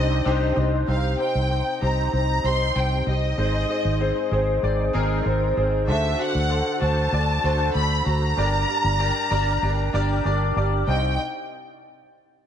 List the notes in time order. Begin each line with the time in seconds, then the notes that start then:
Already playing: C2 C3 C4 D4 D#4 G4 C5 D#5
0.25 C2 C4 D4 D#4 G4 C5
0.56 C2 C4 D4 D#4 G4 C5
0.87 C2 C3 C4 D#4 G4 C5 F5
1.18 C4 D#4 G4 C5 G5
1.35 C2
1.50 C4 D#4 G4 C5
1.81 C2 C4 D#4 G4 C5 A#5
2.12 C2 C4 D#4 G4 C5 A#5
2.43 C2 C4 D#4 G4 C5 C6
2.74 C2 C4 D#4 G4 C5 G5
3.06 C2 C4 D#4 G4 C5 D#5
3.37 G#1 G#2 C4 D#4 G#4 C5
3.68 C4 D#4 G#4 C5
3.85 G#1
3.99 C4 D#4 G#4 C5
4.31 G#1 C4 D#4 G#4 C5
4.62 G#1 C4 D#4 G#4 D5
4.93 G#1 C4 D#4 G#4 A#4
5.24 G#1 C4 D#4 G#4 C5
5.56 G#1 C4 D#4 G#4 C5
5.87 D2 D3 D4 F#4 A4 C5 E5
6.18 D4 F#4 A4 C5 F#5
6.35 D2
6.50 D4 F#4 A4 C5
6.80 D2 D4 F#4 A4 C5 A5
7.12 D2 D4 F#4 A4 D5
7.43 D2 D4 F#4 A4 C5
7.74 D2 D4 F#4 A4 C5 B5
8.05 D2 D4 F#4 A4 C5 A#5
8.37 G1 G2 D4 G4 A#4 D5
8.67 D4 G4 A#4 D5
8.84 G1
8.99 D4 G4 A#4 D5
9.30 G1 D4 G4 A#4 D5
9.62 G1 D4 G4 A#4 D5
9.93 G1 D4 G4 A#4 D5
10.24 G1 D4 G4 A#4 D5
10.56 G1 D4 G4 A#4 D5
10.87 C2 D#4 G4 C5 D#5 G5